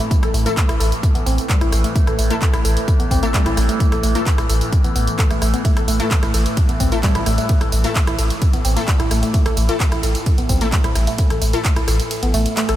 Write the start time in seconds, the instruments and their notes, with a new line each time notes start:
Already playing: synth drone A2 E3
0.11 synth arpeggio sound A3, kick, closed hi-hat, tambourine
0.23 sub bass A1, synth arpeggio sound A4, cross-stick, closed hi-hat, tambourine
0.34 sub bass A1, synth arpeggio sound A3, open hi-hat, tambourine
0.46 synth stab A3 E4 A4, closed hi-hat, tambourine
0.57 kick, clap, closed hi-hat, tambourine
0.69 sub bass A1, synth arpeggio sound E4, cross-stick, closed hi-hat, tambourine
0.80 sub bass A1, synth arpeggio sound A4, open hi-hat, tambourine
0.92 closed hi-hat, tambourine
1.03 kick, closed hi-hat, tambourine
1.15 sub bass A1, synth arpeggio sound B3, closed hi-hat, tambourine
1.26 sub bass A1, synth arpeggio sound C4, open hi-hat, tambourine
1.38 closed hi-hat, tambourine
1.49 synth arpeggio sound G3, kick, clap, closed hi-hat, tambourine
1.61 sub bass A1, synth arpeggio sound E4, cross-stick, closed hi-hat, tambourine
1.72 sub bass A1, synth arpeggio sound A3, cross-stick, open hi-hat, tambourine
1.84 synth arpeggio sound A3, closed hi-hat, tambourine
1.95 synth arpeggio sound A3, kick, closed hi-hat, tambourine
2.07 sub bass A1, synth arpeggio sound A4, cross-stick, closed hi-hat, tambourine
2.19 sub bass A1, synth arpeggio sound A3, open hi-hat, tambourine
2.30 synth stab A3 E4 A4, closed hi-hat, tambourine
2.42 kick, clap, closed hi-hat, tambourine
2.54 sub bass A1, synth arpeggio sound E4, cross-stick, closed hi-hat, tambourine
2.65 sub bass A1, synth arpeggio sound A4, open hi-hat, tambourine
2.77 closed hi-hat, tambourine
2.88 kick, closed hi-hat, tambourine
3.00 sub bass A1, synth arpeggio sound B3, closed hi-hat, tambourine
3.11 sub bass A1, synth arpeggio sound C4, kick, open hi-hat, tambourine
3.23 synth stab A3 E4 A4, closed hi-hat, tambourine
3.34 synth arpeggio sound G3, kick, clap, closed hi-hat, tambourine
3.46 sub bass A1, synth arpeggio sound E4, cross-stick, closed hi-hat, tambourine
3.57 sub bass A1, synth arpeggio sound A3, cross-stick, open hi-hat, tambourine
3.69 synth arpeggio sound A3, closed hi-hat, tambourine
3.80 synth arpeggio sound A3, kick, closed hi-hat, tambourine
3.92 sub bass A1, synth arpeggio sound A4, cross-stick, closed hi-hat, tambourine
4.03 sub bass A1, synth arpeggio sound A3, open hi-hat, tambourine
4.15 synth stab A3 E4 A4, closed hi-hat, tambourine
4.26 kick, clap, closed hi-hat, tambourine
4.38 sub bass A1, synth arpeggio sound E4, cross-stick, closed hi-hat, tambourine
4.49 sub bass A1, synth arpeggio sound A4, open hi-hat, tambourine
4.61 closed hi-hat, tambourine
4.73 kick, closed hi-hat, tambourine
4.84 sub bass A1, synth arpeggio sound B3, closed hi-hat, tambourine
4.96 sub bass A1, synth arpeggio sound B3, open hi-hat, tambourine
5.07 closed hi-hat, tambourine
5.19 synth arpeggio sound A4, kick, clap, closed hi-hat, tambourine
5.30 sub bass A1, synth arpeggio sound A3, cross-stick, closed hi-hat, tambourine
5.42 sub bass A1, synth arpeggio sound A3, cross-stick, open hi-hat, tambourine
5.54 synth arpeggio sound B3, closed hi-hat, tambourine
5.65 synth arpeggio sound A3, kick, closed hi-hat, ride, tambourine
5.76 sub bass A1, synth arpeggio sound A4, cross-stick, closed hi-hat, ride, tambourine
5.88 sub bass A1, synth arpeggio sound A3, open hi-hat, ride, tambourine
6.00 synth stab A3 E4 A4, closed hi-hat, ride, tambourine
6.11 kick, clap, closed hi-hat, ride, tambourine
6.23 sub bass A1, synth arpeggio sound E4, cross-stick, closed hi-hat, ride, tambourine
6.34 sub bass A1, synth arpeggio sound A4, open hi-hat, ride, tambourine
6.46 closed hi-hat, ride, tambourine
6.57 kick, closed hi-hat, ride, tambourine
6.69 sub bass A1, synth arpeggio sound B3, closed hi-hat, ride, tambourine
6.80 sub bass A1, synth arpeggio sound C4, kick, open hi-hat, ride, tambourine
6.92 synth stab A3 E4 A4, closed hi-hat, ride, tambourine
7.03 synth arpeggio sound G3, kick, clap, closed hi-hat, ride, tambourine
7.15 sub bass A1, synth arpeggio sound E4, cross-stick, closed hi-hat, ride, tambourine
7.26 sub bass A1, synth arpeggio sound A3, cross-stick, open hi-hat, ride, tambourine
7.38 synth arpeggio sound A3, closed hi-hat, ride, tambourine
7.49 synth arpeggio sound A3, kick, closed hi-hat, ride, tambourine
7.61 sub bass A1, synth arpeggio sound A4, cross-stick, closed hi-hat, ride, tambourine
7.72 sub bass A1, synth arpeggio sound A3, open hi-hat, ride, tambourine
7.84 synth stab A3 E4 A4, closed hi-hat, ride, tambourine
7.95 kick, clap, closed hi-hat, ride, tambourine
8.07 sub bass A1, synth arpeggio sound E4, cross-stick, closed hi-hat, ride, tambourine
8.19 sub bass A1, synth arpeggio sound A4, open hi-hat, ride, tambourine
8.30 closed hi-hat, ride, tambourine
8.42 kick, closed hi-hat, ride, tambourine
8.53 sub bass A1, synth arpeggio sound B3, closed hi-hat, ride, tambourine
8.65 sub bass A1, synth arpeggio sound C4, open hi-hat, ride, tambourine
8.76 synth stab A3 E4 A4, closed hi-hat, ride, tambourine
8.88 synth arpeggio sound G3, kick, clap, closed hi-hat, ride, tambourine
9.00 sub bass A1, synth arpeggio sound E4, cross-stick, closed hi-hat, ride, tambourine
9.11 sub bass A1, synth arpeggio sound A3, cross-stick, open hi-hat, ride, tambourine
9.23 synth arpeggio sound A3, closed hi-hat, ride, tambourine
9.34 synth arpeggio sound A3, kick, closed hi-hat, ride, tambourine
9.46 sub bass A1, synth arpeggio sound A4, cross-stick, closed hi-hat, ride, tambourine
9.57 sub bass A1, synth arpeggio sound A3, open hi-hat, ride, tambourine
9.69 synth stab A3 E4 A4, closed hi-hat, ride, tambourine
9.80 kick, clap, closed hi-hat, ride, tambourine
9.92 sub bass A1, synth arpeggio sound E4, cross-stick, closed hi-hat, ride, tambourine
10.03 sub bass A1, synth arpeggio sound A4, open hi-hat, ride, tambourine
10.15 closed hi-hat, ride, tambourine
10.26 kick, closed hi-hat, ride, tambourine
10.38 sub bass A1, synth arpeggio sound B3, closed hi-hat, ride, tambourine
10.49 sub bass A1, synth arpeggio sound C4, kick, open hi-hat, ride, tambourine
10.61 synth stab A3 E4 A4, closed hi-hat, ride, tambourine
10.72 synth arpeggio sound G3, kick, clap, closed hi-hat, ride, tambourine
10.84 sub bass A1, synth arpeggio sound E4, cross-stick, closed hi-hat, ride, tambourine
10.95 sub bass A1, synth arpeggio sound A3, cross-stick, open hi-hat, ride, tambourine
11.07 synth arpeggio sound A3, closed hi-hat, ride, tambourine
11.18 synth arpeggio sound A3, kick, closed hi-hat, ride, tambourine
11.30 sub bass A1, synth arpeggio sound A4, cross-stick, closed hi-hat, ride, tambourine
11.42 sub bass A1, synth arpeggio sound A3, open hi-hat, ride, tambourine
11.53 synth stab A3 E4 A4, closed hi-hat, ride, tambourine
11.65 kick, clap, closed hi-hat, ride, tambourine
11.76 sub bass A1, synth arpeggio sound E4, cross-stick, closed hi-hat, ride, tambourine
11.88 sub bass A1, synth arpeggio sound A4, cross-stick, open hi-hat, ride, tambourine
12.00 closed hi-hat, ride, tambourine
12.11 closed hi-hat, ride, tambourine
12.23 sub bass A1, synth arpeggio sound B3, closed hi-hat, ride, tambourine
12.34 sub bass A1, synth arpeggio sound A3, open hi-hat, ride, tambourine
12.46 closed hi-hat, ride, tambourine
12.57 synth arpeggio sound A3, clap, closed hi-hat, ride, tambourine
12.69 sub bass A1, synth arpeggio sound A4, cross-stick, closed hi-hat, ride, tambourine